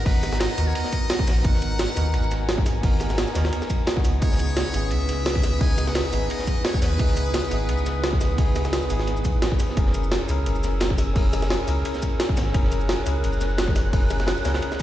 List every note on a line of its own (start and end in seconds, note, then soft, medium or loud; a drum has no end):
0.00 0.04 B3 medium
0.00 0.55 B3 medium
0.00 0.05 D#4 medium
0.00 0.06 F#4 medium
0.00 0.60 A#4 loud
0.00 1.42 F#5 medium
0.00 4.01 A#5 medium
0.05 0.48 G#1 loud
0.05 0.56 D#4 medium
0.05 0.56 F#4 medium
0.05 0.42 B4 loud
0.05 0.57 A#5 medium
0.05 kick loud
0.05 closed hi-hat medium
0.05 open hi-hat medium
0.23 snare soft
0.23 closed hi-hat medium
0.23 ride medium
0.23 shaker medium
0.33 snare soft
0.33 shaker soft
0.40 0.68 D#5 loud
0.40 snare loud
0.40 closed hi-hat medium
0.40 ride medium
0.56 0.74 D#2 loud
0.56 1.41 B3 medium
0.56 1.42 D#4 medium
0.56 1.43 F#4 medium
0.56 open hi-hat medium
0.56 ride medium
0.56 shaker medium
0.60 1.44 A#4 loud
0.67 0.74 C#5 medium
0.75 1.46 D#5 loud
0.75 closed hi-hat medium
0.75 ride medium
0.84 snare medium
0.84 shaker soft
0.92 kick medium
0.92 closed hi-hat medium
0.92 ride medium
0.92 shaker medium
1.10 snare loud
1.10 closed hi-hat loud
1.10 ride medium
1.19 kick loud
1.27 1.43 A#1 loud
1.27 snare loud
1.27 open hi-hat medium
1.27 ride medium
1.27 shaker medium
1.37 snare medium
1.42 1.87 G#1 loud
1.42 1.93 B3 medium
1.42 1.94 D#4 medium
1.42 1.95 F#4 medium
1.42 2.49 F#5 loud
1.42 4.02 G#5 medium
1.42 kick loud
1.42 closed hi-hat medium
1.42 ride medium
1.47 1.96 A#4 medium
1.54 snare soft
1.62 closed hi-hat medium
1.62 ride medium
1.62 shaker medium
1.71 shaker soft
1.79 snare loud
1.79 closed hi-hat medium
1.79 ride medium
1.94 2.15 D#2 loud
1.94 2.80 B3 medium
1.94 2.81 D#4 medium
1.94 2.82 F#4 medium
1.94 open hi-hat medium
1.94 ride medium
1.94 shaker medium
1.99 2.82 A#4 medium
2.14 2.82 G#1 loud
2.14 closed hi-hat medium
2.14 ride medium
2.23 shaker soft
2.31 snare soft
2.31 closed hi-hat medium
2.31 ride medium
2.31 shaker medium
2.48 snare loud
2.48 closed hi-hat loud
2.48 ride medium
2.58 kick loud
2.58 snare soft
2.66 snare soft
2.66 open hi-hat medium
2.66 ride medium
2.66 shaker medium
2.81 3.26 G#1 loud
2.81 3.32 B3 medium
2.81 3.33 D#4 medium
2.81 3.34 F#4 medium
2.81 kick loud
2.81 closed hi-hat medium
2.81 open hi-hat medium
2.85 3.34 A#4 medium
3.00 snare soft
3.00 closed hi-hat medium
3.00 ride medium
3.00 shaker medium
3.10 snare soft
3.10 shaker soft
3.18 snare loud
3.18 closed hi-hat medium
3.18 ride medium
3.27 shaker soft
3.33 3.51 D#2 loud
3.33 3.94 B3 medium
3.33 3.95 D#4 medium
3.33 3.95 F#4 medium
3.33 snare loud
3.33 open hi-hat medium
3.33 ride medium
3.33 shaker medium
3.38 3.96 A#4 medium
3.44 snare loud
3.44 snare soft
3.44 ride medium
3.53 closed hi-hat medium
3.53 ride medium
3.62 snare medium
3.62 snare soft
3.62 shaker soft
3.70 kick medium
3.70 closed hi-hat medium
3.70 ride medium
3.70 shaker medium
3.87 snare loud
3.87 closed hi-hat medium
3.87 ride medium
3.96 4.19 B3 medium
3.96 4.20 D#4 medium
3.96 4.20 E4 medium
3.96 4.21 F#4 medium
3.96 kick loud
4.05 4.20 C#2 loud
4.05 9.73 B4 medium
4.05 9.73 D#6 medium
4.05 snare soft
4.05 open hi-hat medium
4.05 ride medium
4.05 shaker medium
4.20 4.65 C#2 loud
4.20 4.71 B3 medium
4.20 4.72 D#4 medium
4.20 4.73 E4 medium
4.20 4.93 C#5 loud
4.20 kick loud
4.20 closed hi-hat medium
4.20 ride medium
4.24 4.73 G#4 medium
4.32 snare medium
4.39 closed hi-hat medium
4.39 ride medium
4.39 shaker medium
4.49 shaker soft
4.56 snare loud
4.56 closed hi-hat medium
4.56 ride medium
4.72 4.93 G#1 loud
4.72 5.57 B3 medium
4.72 5.59 C#4 medium
4.72 5.59 E4 medium
4.72 open hi-hat medium
4.72 ride medium
4.72 shaker medium
4.76 5.60 G#4 medium
4.91 5.60 C#2 loud
4.91 5.62 E5 loud
4.91 closed hi-hat medium
4.91 ride medium
5.01 shaker soft
5.08 snare soft
5.08 closed hi-hat medium
5.08 ride medium
5.08 shaker medium
5.26 snare loud
5.26 closed hi-hat medium
5.26 ride medium
5.35 kick loud
5.35 snare soft
5.44 snare soft
5.44 open hi-hat medium
5.44 ride medium
5.44 shaker medium
5.59 6.03 C#2 loud
5.59 6.09 B3 medium
5.59 6.10 D#4 medium
5.59 6.11 E4 medium
5.59 5.89 G#5 loud
5.59 kick loud
5.59 closed hi-hat medium
5.59 open hi-hat medium
5.63 6.12 G#4 medium
5.78 snare soft
5.78 closed hi-hat medium
5.78 ride medium
5.78 shaker medium
5.87 5.97 F#5 loud
5.87 snare soft
5.87 shaker soft
5.95 6.32 E5 loud
5.95 snare loud
5.95 closed hi-hat medium
5.95 ride medium
6.11 6.29 G#1 loud
6.11 6.96 B3 medium
6.11 6.97 D#4 medium
6.11 6.98 E4 medium
6.11 open hi-hat medium
6.11 ride medium
6.11 shaker medium
6.15 6.99 G#4 medium
6.30 6.64 D#5 loud
6.30 closed hi-hat medium
6.30 ride loud
6.39 snare medium
6.39 shaker soft
6.47 kick medium
6.47 closed hi-hat medium
6.47 ride medium
6.47 shaker medium
6.64 6.81 C#5 loud
6.64 snare loud
6.64 closed hi-hat medium
6.64 ride medium
6.74 kick loud
6.82 6.98 D#2 loud
6.82 8.17 B4 loud
6.82 snare loud
6.82 open hi-hat medium
6.82 ride medium
6.82 shaker medium
6.92 snare medium
6.97 7.42 C#2 loud
6.97 7.48 B3 medium
6.97 7.49 D#4 medium
6.97 7.50 E4 medium
6.97 kick loud
6.97 closed hi-hat loud
6.97 ride medium
7.02 7.51 G#4 medium
7.08 snare soft
7.17 closed hi-hat medium
7.17 ride medium
7.17 shaker medium
7.26 shaker soft
7.34 snare loud
7.34 closed hi-hat loud
7.34 ride medium
7.49 7.70 G#1 loud
7.49 8.35 B3 medium
7.49 8.36 D#4 medium
7.49 8.37 E4 medium
7.49 open hi-hat medium
7.49 ride medium
7.49 shaker medium
7.54 8.37 G#4 medium
7.69 8.37 C#2 loud
7.69 closed hi-hat loud
7.69 ride loud
7.78 shaker soft
7.86 snare soft
7.86 closed hi-hat medium
7.86 ride medium
7.86 shaker medium
8.04 snare loud
8.04 closed hi-hat loud
8.04 ride medium
8.13 kick loud
8.13 snare medium
8.21 snare soft
8.21 open hi-hat medium
8.21 ride medium
8.21 shaker medium
8.36 8.81 C#2 loud
8.36 8.87 B3 medium
8.36 8.88 D#4 medium
8.36 8.89 E4 medium
8.36 kick loud
8.36 closed hi-hat loud
8.36 open hi-hat medium
8.40 8.89 G#4 loud
8.56 snare soft
8.56 closed hi-hat medium
8.56 ride medium
8.56 shaker medium
8.64 snare soft
8.64 shaker soft
8.73 snare loud
8.73 closed hi-hat loud
8.73 ride medium
8.82 shaker soft
8.88 9.26 G#1 loud
8.88 9.74 B3 medium
8.88 9.75 D#4 medium
8.88 9.75 E4 medium
8.88 open hi-hat medium
8.88 ride medium
8.88 shaker medium
8.92 9.76 G#4 medium
9.00 snare soft
9.07 snare soft
9.07 closed hi-hat loud
9.07 ride medium
9.17 shaker soft
9.25 9.36 C#2 medium
9.25 kick medium
9.25 closed hi-hat medium
9.25 ride medium
9.25 shaker medium
9.34 9.50 G#1 medium
9.42 snare loud
9.42 closed hi-hat loud
9.42 ride medium
9.52 kick loud
9.59 snare soft
9.59 open hi-hat medium
9.59 ride medium
9.59 shaker medium
9.69 snare medium
9.75 10.19 F#1 loud
9.75 10.26 C#4 medium
9.75 10.27 E4 medium
9.75 10.27 G#4 medium
9.75 14.82 A#4 medium
9.75 14.82 G#5 medium
9.75 12.52 E6 medium
9.75 kick loud
9.75 closed hi-hat medium
9.75 ride medium
9.79 10.28 A#4 medium
9.87 snare medium
9.94 closed hi-hat medium
9.94 ride medium
9.94 shaker medium
10.04 shaker soft
10.11 snare loud
10.11 closed hi-hat loud
10.11 ride medium
10.27 10.48 C#2 loud
10.27 11.13 C#4 medium
10.27 11.13 E4 medium
10.27 11.14 G#4 medium
10.27 open hi-hat medium
10.27 ride medium
10.27 shaker medium
10.31 11.15 A#4 medium
10.46 11.14 F#1 loud
10.46 closed hi-hat loud
10.46 ride medium
10.56 shaker soft
10.64 snare soft
10.64 closed hi-hat medium
10.64 ride medium
10.64 shaker medium
10.80 snare loud
10.80 closed hi-hat loud
10.80 ride medium
10.90 kick loud
10.90 snare medium
10.98 snare soft
10.98 open hi-hat medium
10.98 ride medium
10.98 shaker medium
11.14 11.58 F#1 loud
11.14 11.64 C#4 medium
11.14 11.65 E4 medium
11.14 11.66 G#4 medium
11.14 kick loud
11.14 closed hi-hat loud
11.14 open hi-hat medium
11.18 11.67 A#4 medium
11.33 snare soft
11.33 closed hi-hat medium
11.33 ride medium
11.33 shaker medium
11.42 snare soft
11.42 shaker soft
11.50 snare loud
11.50 closed hi-hat medium
11.50 ride medium
11.66 11.84 C#2 loud
11.66 12.51 C#4 medium
11.66 12.52 E4 medium
11.66 12.53 G#4 medium
11.66 open hi-hat medium
11.66 ride medium
11.66 shaker medium
11.70 12.54 A#4 loud
11.85 closed hi-hat medium
11.85 ride loud
11.94 snare medium
11.94 shaker soft
12.02 kick medium
12.02 closed hi-hat medium
12.02 ride medium
12.02 shaker medium
12.20 snare loud
12.20 closed hi-hat loud
12.20 ride medium
12.29 kick loud
12.37 12.53 G#1 loud
12.37 snare loud
12.37 open hi-hat medium
12.37 ride medium
12.37 shaker medium
12.47 snare medium
12.52 12.97 F#1 loud
12.52 13.03 C#4 medium
12.52 13.04 E4 medium
12.52 13.05 G#4 medium
12.52 14.82 F#6 medium
12.52 kick loud
12.52 closed hi-hat medium
12.52 ride loud
12.56 13.06 A#4 medium
12.64 snare soft
12.72 closed hi-hat medium
12.72 ride medium
12.72 shaker medium
12.81 shaker soft
12.89 snare loud
12.89 closed hi-hat medium
12.89 ride medium
13.04 13.25 C#2 loud
13.04 13.90 C#4 medium
13.04 13.91 E4 medium
13.04 13.92 G#4 medium
13.04 open hi-hat medium
13.04 ride medium
13.04 shaker medium
13.09 13.92 A#4 loud
13.24 13.92 F#1 loud
13.24 closed hi-hat medium
13.24 ride medium
13.33 shaker soft
13.41 snare soft
13.41 closed hi-hat medium
13.41 ride medium
13.41 shaker medium
13.58 snare loud
13.58 closed hi-hat medium
13.58 ride medium
13.68 kick loud
13.68 snare medium
13.75 snare soft
13.75 open hi-hat medium
13.75 ride medium
13.75 shaker medium
13.91 14.36 F#1 loud
13.91 14.42 C#4 medium
13.91 14.43 E4 medium
13.91 14.44 G#4 medium
13.91 kick loud
13.91 closed hi-hat medium
13.91 open hi-hat medium
13.95 14.44 A#4 medium
14.10 snare soft
14.10 closed hi-hat medium
14.10 ride medium
14.10 shaker medium
14.20 snare soft
14.20 shaker soft
14.27 snare loud
14.27 closed hi-hat medium
14.27 ride loud
14.37 shaker soft
14.43 14.61 C#2 loud
14.43 14.82 C#4 medium
14.43 14.82 E4 medium
14.43 14.82 G#4 medium
14.43 snare loud
14.43 open hi-hat medium
14.43 ride medium
14.43 shaker medium
14.47 14.82 A#4 medium
14.54 snare loud
14.54 snare soft
14.54 ride medium
14.62 closed hi-hat medium
14.62 ride medium
14.71 snare medium
14.71 snare soft
14.71 shaker soft